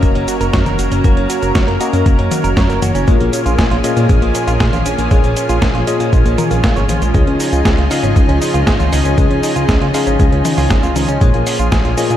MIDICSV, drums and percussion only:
0, 0, Header, 1, 2, 480
1, 0, Start_track
1, 0, Key_signature, -5, "minor"
1, 0, Tempo, 508475
1, 985, Time_signature, 4, 2, 24, 8
1, 11488, End_track
2, 0, Start_track
2, 0, Title_t, "Drums"
2, 25, Note_on_c, 9, 36, 117
2, 25, Note_on_c, 9, 42, 70
2, 25, Note_on_c, 9, 69, 41
2, 120, Note_off_c, 9, 36, 0
2, 120, Note_off_c, 9, 42, 0
2, 120, Note_off_c, 9, 69, 0
2, 145, Note_on_c, 9, 42, 43
2, 239, Note_off_c, 9, 42, 0
2, 264, Note_on_c, 9, 42, 97
2, 264, Note_on_c, 9, 69, 72
2, 359, Note_off_c, 9, 42, 0
2, 359, Note_off_c, 9, 69, 0
2, 385, Note_on_c, 9, 42, 43
2, 385, Note_on_c, 9, 69, 30
2, 479, Note_off_c, 9, 42, 0
2, 479, Note_off_c, 9, 69, 0
2, 505, Note_on_c, 9, 36, 109
2, 505, Note_on_c, 9, 38, 119
2, 505, Note_on_c, 9, 42, 70
2, 505, Note_on_c, 9, 69, 41
2, 599, Note_off_c, 9, 38, 0
2, 599, Note_off_c, 9, 42, 0
2, 599, Note_off_c, 9, 69, 0
2, 600, Note_off_c, 9, 36, 0
2, 625, Note_on_c, 9, 42, 41
2, 625, Note_on_c, 9, 48, 58
2, 625, Note_on_c, 9, 69, 27
2, 720, Note_off_c, 9, 42, 0
2, 720, Note_off_c, 9, 48, 0
2, 720, Note_off_c, 9, 69, 0
2, 744, Note_on_c, 9, 42, 99
2, 744, Note_on_c, 9, 69, 70
2, 839, Note_off_c, 9, 42, 0
2, 839, Note_off_c, 9, 69, 0
2, 865, Note_on_c, 9, 42, 42
2, 865, Note_on_c, 9, 69, 30
2, 959, Note_off_c, 9, 42, 0
2, 959, Note_off_c, 9, 69, 0
2, 985, Note_on_c, 9, 36, 127
2, 985, Note_on_c, 9, 42, 71
2, 985, Note_on_c, 9, 69, 40
2, 1080, Note_off_c, 9, 36, 0
2, 1080, Note_off_c, 9, 42, 0
2, 1080, Note_off_c, 9, 69, 0
2, 1105, Note_on_c, 9, 42, 41
2, 1199, Note_off_c, 9, 42, 0
2, 1225, Note_on_c, 9, 42, 104
2, 1225, Note_on_c, 9, 69, 70
2, 1319, Note_off_c, 9, 42, 0
2, 1319, Note_off_c, 9, 69, 0
2, 1345, Note_on_c, 9, 42, 42
2, 1345, Note_on_c, 9, 69, 28
2, 1440, Note_off_c, 9, 42, 0
2, 1440, Note_off_c, 9, 69, 0
2, 1465, Note_on_c, 9, 36, 117
2, 1465, Note_on_c, 9, 38, 127
2, 1465, Note_on_c, 9, 42, 75
2, 1465, Note_on_c, 9, 69, 40
2, 1559, Note_off_c, 9, 36, 0
2, 1559, Note_off_c, 9, 38, 0
2, 1559, Note_off_c, 9, 42, 0
2, 1559, Note_off_c, 9, 69, 0
2, 1585, Note_on_c, 9, 42, 44
2, 1679, Note_off_c, 9, 42, 0
2, 1705, Note_on_c, 9, 42, 98
2, 1705, Note_on_c, 9, 69, 68
2, 1799, Note_off_c, 9, 42, 0
2, 1799, Note_off_c, 9, 69, 0
2, 1825, Note_on_c, 9, 42, 41
2, 1825, Note_on_c, 9, 69, 27
2, 1920, Note_off_c, 9, 42, 0
2, 1920, Note_off_c, 9, 69, 0
2, 1945, Note_on_c, 9, 36, 123
2, 1945, Note_on_c, 9, 42, 73
2, 1945, Note_on_c, 9, 69, 39
2, 2039, Note_off_c, 9, 36, 0
2, 2039, Note_off_c, 9, 42, 0
2, 2039, Note_off_c, 9, 69, 0
2, 2065, Note_on_c, 9, 42, 43
2, 2159, Note_off_c, 9, 42, 0
2, 2185, Note_on_c, 9, 42, 100
2, 2185, Note_on_c, 9, 48, 80
2, 2185, Note_on_c, 9, 69, 70
2, 2280, Note_off_c, 9, 42, 0
2, 2280, Note_off_c, 9, 48, 0
2, 2280, Note_off_c, 9, 69, 0
2, 2305, Note_on_c, 9, 42, 42
2, 2305, Note_on_c, 9, 69, 30
2, 2400, Note_off_c, 9, 42, 0
2, 2400, Note_off_c, 9, 69, 0
2, 2425, Note_on_c, 9, 36, 119
2, 2426, Note_on_c, 9, 38, 125
2, 2426, Note_on_c, 9, 42, 72
2, 2426, Note_on_c, 9, 69, 41
2, 2519, Note_off_c, 9, 36, 0
2, 2520, Note_off_c, 9, 38, 0
2, 2520, Note_off_c, 9, 42, 0
2, 2520, Note_off_c, 9, 69, 0
2, 2545, Note_on_c, 9, 42, 41
2, 2545, Note_on_c, 9, 69, 26
2, 2640, Note_off_c, 9, 42, 0
2, 2640, Note_off_c, 9, 69, 0
2, 2666, Note_on_c, 9, 42, 93
2, 2666, Note_on_c, 9, 48, 60
2, 2666, Note_on_c, 9, 69, 68
2, 2760, Note_off_c, 9, 42, 0
2, 2760, Note_off_c, 9, 48, 0
2, 2760, Note_off_c, 9, 69, 0
2, 2785, Note_on_c, 9, 42, 41
2, 2785, Note_on_c, 9, 69, 29
2, 2880, Note_off_c, 9, 42, 0
2, 2880, Note_off_c, 9, 69, 0
2, 2905, Note_on_c, 9, 36, 127
2, 2905, Note_on_c, 9, 42, 68
2, 2905, Note_on_c, 9, 69, 39
2, 2999, Note_off_c, 9, 36, 0
2, 3000, Note_off_c, 9, 42, 0
2, 3000, Note_off_c, 9, 69, 0
2, 3025, Note_on_c, 9, 42, 41
2, 3120, Note_off_c, 9, 42, 0
2, 3145, Note_on_c, 9, 42, 103
2, 3145, Note_on_c, 9, 69, 71
2, 3240, Note_off_c, 9, 42, 0
2, 3240, Note_off_c, 9, 69, 0
2, 3266, Note_on_c, 9, 42, 40
2, 3266, Note_on_c, 9, 69, 28
2, 3360, Note_off_c, 9, 42, 0
2, 3360, Note_off_c, 9, 69, 0
2, 3385, Note_on_c, 9, 36, 115
2, 3386, Note_on_c, 9, 38, 127
2, 3386, Note_on_c, 9, 42, 71
2, 3386, Note_on_c, 9, 69, 38
2, 3479, Note_off_c, 9, 36, 0
2, 3480, Note_off_c, 9, 38, 0
2, 3480, Note_off_c, 9, 42, 0
2, 3480, Note_off_c, 9, 69, 0
2, 3505, Note_on_c, 9, 42, 44
2, 3600, Note_off_c, 9, 42, 0
2, 3626, Note_on_c, 9, 42, 97
2, 3626, Note_on_c, 9, 69, 67
2, 3720, Note_off_c, 9, 42, 0
2, 3720, Note_off_c, 9, 69, 0
2, 3745, Note_on_c, 9, 42, 38
2, 3745, Note_on_c, 9, 69, 29
2, 3840, Note_off_c, 9, 42, 0
2, 3840, Note_off_c, 9, 69, 0
2, 3865, Note_on_c, 9, 36, 122
2, 3865, Note_on_c, 9, 42, 69
2, 3865, Note_on_c, 9, 69, 38
2, 3960, Note_off_c, 9, 36, 0
2, 3960, Note_off_c, 9, 42, 0
2, 3960, Note_off_c, 9, 69, 0
2, 3985, Note_on_c, 9, 42, 41
2, 4079, Note_off_c, 9, 42, 0
2, 4105, Note_on_c, 9, 42, 97
2, 4105, Note_on_c, 9, 69, 72
2, 4199, Note_off_c, 9, 42, 0
2, 4199, Note_off_c, 9, 69, 0
2, 4226, Note_on_c, 9, 42, 41
2, 4226, Note_on_c, 9, 69, 28
2, 4320, Note_off_c, 9, 42, 0
2, 4320, Note_off_c, 9, 69, 0
2, 4345, Note_on_c, 9, 36, 113
2, 4346, Note_on_c, 9, 38, 127
2, 4346, Note_on_c, 9, 42, 69
2, 4346, Note_on_c, 9, 69, 39
2, 4440, Note_off_c, 9, 36, 0
2, 4440, Note_off_c, 9, 38, 0
2, 4440, Note_off_c, 9, 42, 0
2, 4440, Note_off_c, 9, 69, 0
2, 4466, Note_on_c, 9, 42, 43
2, 4466, Note_on_c, 9, 48, 59
2, 4466, Note_on_c, 9, 69, 26
2, 4560, Note_off_c, 9, 42, 0
2, 4560, Note_off_c, 9, 48, 0
2, 4560, Note_off_c, 9, 69, 0
2, 4586, Note_on_c, 9, 42, 97
2, 4586, Note_on_c, 9, 69, 69
2, 4680, Note_off_c, 9, 42, 0
2, 4680, Note_off_c, 9, 69, 0
2, 4705, Note_on_c, 9, 42, 43
2, 4705, Note_on_c, 9, 69, 30
2, 4800, Note_off_c, 9, 42, 0
2, 4800, Note_off_c, 9, 69, 0
2, 4825, Note_on_c, 9, 36, 126
2, 4825, Note_on_c, 9, 42, 68
2, 4825, Note_on_c, 9, 69, 40
2, 4920, Note_off_c, 9, 36, 0
2, 4920, Note_off_c, 9, 42, 0
2, 4920, Note_off_c, 9, 69, 0
2, 4945, Note_on_c, 9, 42, 39
2, 4945, Note_on_c, 9, 69, 27
2, 5040, Note_off_c, 9, 42, 0
2, 5040, Note_off_c, 9, 69, 0
2, 5065, Note_on_c, 9, 42, 93
2, 5065, Note_on_c, 9, 69, 70
2, 5159, Note_off_c, 9, 42, 0
2, 5159, Note_off_c, 9, 69, 0
2, 5186, Note_on_c, 9, 42, 39
2, 5186, Note_on_c, 9, 69, 30
2, 5280, Note_off_c, 9, 42, 0
2, 5280, Note_off_c, 9, 69, 0
2, 5305, Note_on_c, 9, 36, 120
2, 5306, Note_on_c, 9, 38, 126
2, 5306, Note_on_c, 9, 42, 70
2, 5306, Note_on_c, 9, 69, 39
2, 5400, Note_off_c, 9, 36, 0
2, 5400, Note_off_c, 9, 38, 0
2, 5400, Note_off_c, 9, 42, 0
2, 5400, Note_off_c, 9, 69, 0
2, 5425, Note_on_c, 9, 42, 40
2, 5519, Note_off_c, 9, 42, 0
2, 5545, Note_on_c, 9, 42, 93
2, 5545, Note_on_c, 9, 69, 66
2, 5639, Note_off_c, 9, 42, 0
2, 5639, Note_off_c, 9, 69, 0
2, 5665, Note_on_c, 9, 42, 38
2, 5665, Note_on_c, 9, 69, 27
2, 5760, Note_off_c, 9, 42, 0
2, 5760, Note_off_c, 9, 69, 0
2, 5785, Note_on_c, 9, 36, 121
2, 5786, Note_on_c, 9, 42, 66
2, 5786, Note_on_c, 9, 69, 39
2, 5880, Note_off_c, 9, 36, 0
2, 5880, Note_off_c, 9, 42, 0
2, 5880, Note_off_c, 9, 69, 0
2, 5906, Note_on_c, 9, 42, 40
2, 5906, Note_on_c, 9, 69, 28
2, 6000, Note_off_c, 9, 42, 0
2, 6000, Note_off_c, 9, 69, 0
2, 6026, Note_on_c, 9, 42, 96
2, 6026, Note_on_c, 9, 48, 83
2, 6026, Note_on_c, 9, 69, 69
2, 6120, Note_off_c, 9, 42, 0
2, 6120, Note_off_c, 9, 48, 0
2, 6120, Note_off_c, 9, 69, 0
2, 6145, Note_on_c, 9, 42, 39
2, 6145, Note_on_c, 9, 69, 29
2, 6240, Note_off_c, 9, 42, 0
2, 6240, Note_off_c, 9, 69, 0
2, 6265, Note_on_c, 9, 36, 114
2, 6266, Note_on_c, 9, 38, 127
2, 6266, Note_on_c, 9, 42, 67
2, 6266, Note_on_c, 9, 69, 41
2, 6359, Note_off_c, 9, 36, 0
2, 6360, Note_off_c, 9, 38, 0
2, 6360, Note_off_c, 9, 42, 0
2, 6360, Note_off_c, 9, 69, 0
2, 6386, Note_on_c, 9, 42, 40
2, 6386, Note_on_c, 9, 69, 27
2, 6480, Note_off_c, 9, 42, 0
2, 6480, Note_off_c, 9, 69, 0
2, 6505, Note_on_c, 9, 42, 94
2, 6505, Note_on_c, 9, 48, 63
2, 6505, Note_on_c, 9, 69, 68
2, 6600, Note_off_c, 9, 42, 0
2, 6600, Note_off_c, 9, 48, 0
2, 6600, Note_off_c, 9, 69, 0
2, 6626, Note_on_c, 9, 42, 39
2, 6626, Note_on_c, 9, 69, 31
2, 6720, Note_off_c, 9, 42, 0
2, 6720, Note_off_c, 9, 69, 0
2, 6745, Note_on_c, 9, 36, 126
2, 6746, Note_on_c, 9, 42, 65
2, 6746, Note_on_c, 9, 69, 41
2, 6839, Note_off_c, 9, 36, 0
2, 6840, Note_off_c, 9, 42, 0
2, 6840, Note_off_c, 9, 69, 0
2, 6866, Note_on_c, 9, 42, 38
2, 6960, Note_off_c, 9, 42, 0
2, 6986, Note_on_c, 9, 46, 106
2, 6986, Note_on_c, 9, 69, 71
2, 7080, Note_off_c, 9, 46, 0
2, 7080, Note_off_c, 9, 69, 0
2, 7106, Note_on_c, 9, 42, 39
2, 7106, Note_on_c, 9, 69, 30
2, 7201, Note_off_c, 9, 42, 0
2, 7201, Note_off_c, 9, 69, 0
2, 7225, Note_on_c, 9, 36, 110
2, 7227, Note_on_c, 9, 38, 126
2, 7227, Note_on_c, 9, 42, 65
2, 7227, Note_on_c, 9, 69, 43
2, 7319, Note_off_c, 9, 36, 0
2, 7321, Note_off_c, 9, 38, 0
2, 7321, Note_off_c, 9, 42, 0
2, 7321, Note_off_c, 9, 69, 0
2, 7346, Note_on_c, 9, 42, 40
2, 7441, Note_off_c, 9, 42, 0
2, 7466, Note_on_c, 9, 46, 105
2, 7466, Note_on_c, 9, 69, 72
2, 7560, Note_off_c, 9, 46, 0
2, 7560, Note_off_c, 9, 69, 0
2, 7586, Note_on_c, 9, 42, 37
2, 7586, Note_on_c, 9, 69, 28
2, 7681, Note_off_c, 9, 42, 0
2, 7681, Note_off_c, 9, 69, 0
2, 7705, Note_on_c, 9, 36, 123
2, 7706, Note_on_c, 9, 42, 65
2, 7706, Note_on_c, 9, 69, 41
2, 7799, Note_off_c, 9, 36, 0
2, 7800, Note_off_c, 9, 42, 0
2, 7800, Note_off_c, 9, 69, 0
2, 7826, Note_on_c, 9, 42, 38
2, 7921, Note_off_c, 9, 42, 0
2, 7946, Note_on_c, 9, 46, 103
2, 7946, Note_on_c, 9, 69, 76
2, 8040, Note_off_c, 9, 46, 0
2, 8040, Note_off_c, 9, 69, 0
2, 8066, Note_on_c, 9, 42, 38
2, 8066, Note_on_c, 9, 69, 30
2, 8160, Note_off_c, 9, 42, 0
2, 8160, Note_off_c, 9, 69, 0
2, 8185, Note_on_c, 9, 36, 110
2, 8186, Note_on_c, 9, 38, 121
2, 8186, Note_on_c, 9, 42, 64
2, 8186, Note_on_c, 9, 69, 44
2, 8279, Note_off_c, 9, 36, 0
2, 8280, Note_off_c, 9, 38, 0
2, 8280, Note_off_c, 9, 42, 0
2, 8280, Note_off_c, 9, 69, 0
2, 8306, Note_on_c, 9, 42, 38
2, 8306, Note_on_c, 9, 48, 63
2, 8306, Note_on_c, 9, 69, 29
2, 8401, Note_off_c, 9, 42, 0
2, 8401, Note_off_c, 9, 48, 0
2, 8401, Note_off_c, 9, 69, 0
2, 8426, Note_on_c, 9, 46, 108
2, 8426, Note_on_c, 9, 69, 70
2, 8521, Note_off_c, 9, 46, 0
2, 8521, Note_off_c, 9, 69, 0
2, 8546, Note_on_c, 9, 42, 39
2, 8546, Note_on_c, 9, 69, 30
2, 8640, Note_off_c, 9, 42, 0
2, 8640, Note_off_c, 9, 69, 0
2, 8665, Note_on_c, 9, 36, 114
2, 8665, Note_on_c, 9, 42, 65
2, 8665, Note_on_c, 9, 69, 42
2, 8759, Note_off_c, 9, 36, 0
2, 8760, Note_off_c, 9, 42, 0
2, 8760, Note_off_c, 9, 69, 0
2, 8785, Note_on_c, 9, 42, 38
2, 8880, Note_off_c, 9, 42, 0
2, 8905, Note_on_c, 9, 46, 110
2, 8905, Note_on_c, 9, 69, 75
2, 8999, Note_off_c, 9, 46, 0
2, 8999, Note_off_c, 9, 69, 0
2, 9025, Note_on_c, 9, 42, 37
2, 9025, Note_on_c, 9, 69, 31
2, 9120, Note_off_c, 9, 42, 0
2, 9120, Note_off_c, 9, 69, 0
2, 9145, Note_on_c, 9, 36, 111
2, 9146, Note_on_c, 9, 38, 119
2, 9146, Note_on_c, 9, 42, 66
2, 9146, Note_on_c, 9, 69, 44
2, 9239, Note_off_c, 9, 36, 0
2, 9240, Note_off_c, 9, 38, 0
2, 9240, Note_off_c, 9, 42, 0
2, 9240, Note_off_c, 9, 69, 0
2, 9266, Note_on_c, 9, 42, 39
2, 9360, Note_off_c, 9, 42, 0
2, 9386, Note_on_c, 9, 46, 110
2, 9386, Note_on_c, 9, 69, 75
2, 9480, Note_off_c, 9, 46, 0
2, 9480, Note_off_c, 9, 69, 0
2, 9506, Note_on_c, 9, 42, 36
2, 9506, Note_on_c, 9, 69, 30
2, 9600, Note_off_c, 9, 42, 0
2, 9600, Note_off_c, 9, 69, 0
2, 9625, Note_on_c, 9, 36, 114
2, 9625, Note_on_c, 9, 42, 68
2, 9625, Note_on_c, 9, 69, 42
2, 9719, Note_off_c, 9, 36, 0
2, 9720, Note_off_c, 9, 42, 0
2, 9720, Note_off_c, 9, 69, 0
2, 9746, Note_on_c, 9, 42, 39
2, 9840, Note_off_c, 9, 42, 0
2, 9865, Note_on_c, 9, 46, 112
2, 9865, Note_on_c, 9, 48, 91
2, 9865, Note_on_c, 9, 69, 74
2, 9960, Note_off_c, 9, 46, 0
2, 9960, Note_off_c, 9, 48, 0
2, 9960, Note_off_c, 9, 69, 0
2, 9986, Note_on_c, 9, 46, 59
2, 9986, Note_on_c, 9, 69, 32
2, 10080, Note_off_c, 9, 46, 0
2, 10080, Note_off_c, 9, 69, 0
2, 10105, Note_on_c, 9, 36, 105
2, 10105, Note_on_c, 9, 38, 122
2, 10105, Note_on_c, 9, 42, 68
2, 10105, Note_on_c, 9, 69, 43
2, 10199, Note_off_c, 9, 36, 0
2, 10200, Note_off_c, 9, 38, 0
2, 10200, Note_off_c, 9, 42, 0
2, 10200, Note_off_c, 9, 69, 0
2, 10225, Note_on_c, 9, 42, 39
2, 10225, Note_on_c, 9, 69, 29
2, 10320, Note_off_c, 9, 42, 0
2, 10320, Note_off_c, 9, 69, 0
2, 10345, Note_on_c, 9, 46, 108
2, 10345, Note_on_c, 9, 48, 64
2, 10345, Note_on_c, 9, 69, 73
2, 10440, Note_off_c, 9, 46, 0
2, 10440, Note_off_c, 9, 48, 0
2, 10440, Note_off_c, 9, 69, 0
2, 10465, Note_on_c, 9, 42, 39
2, 10465, Note_on_c, 9, 69, 33
2, 10559, Note_off_c, 9, 42, 0
2, 10559, Note_off_c, 9, 69, 0
2, 10585, Note_on_c, 9, 36, 118
2, 10585, Note_on_c, 9, 42, 67
2, 10585, Note_on_c, 9, 69, 42
2, 10679, Note_off_c, 9, 36, 0
2, 10679, Note_off_c, 9, 42, 0
2, 10679, Note_off_c, 9, 69, 0
2, 10705, Note_on_c, 9, 42, 41
2, 10799, Note_off_c, 9, 42, 0
2, 10824, Note_on_c, 9, 46, 117
2, 10824, Note_on_c, 9, 69, 77
2, 10919, Note_off_c, 9, 46, 0
2, 10919, Note_off_c, 9, 69, 0
2, 10945, Note_on_c, 9, 42, 39
2, 10945, Note_on_c, 9, 69, 32
2, 11039, Note_off_c, 9, 42, 0
2, 11039, Note_off_c, 9, 69, 0
2, 11065, Note_on_c, 9, 36, 106
2, 11065, Note_on_c, 9, 38, 114
2, 11065, Note_on_c, 9, 42, 69
2, 11065, Note_on_c, 9, 69, 44
2, 11159, Note_off_c, 9, 36, 0
2, 11159, Note_off_c, 9, 38, 0
2, 11159, Note_off_c, 9, 42, 0
2, 11159, Note_off_c, 9, 69, 0
2, 11185, Note_on_c, 9, 42, 41
2, 11280, Note_off_c, 9, 42, 0
2, 11305, Note_on_c, 9, 46, 113
2, 11305, Note_on_c, 9, 69, 71
2, 11399, Note_off_c, 9, 46, 0
2, 11399, Note_off_c, 9, 69, 0
2, 11424, Note_on_c, 9, 42, 38
2, 11424, Note_on_c, 9, 69, 31
2, 11488, Note_off_c, 9, 42, 0
2, 11488, Note_off_c, 9, 69, 0
2, 11488, End_track
0, 0, End_of_file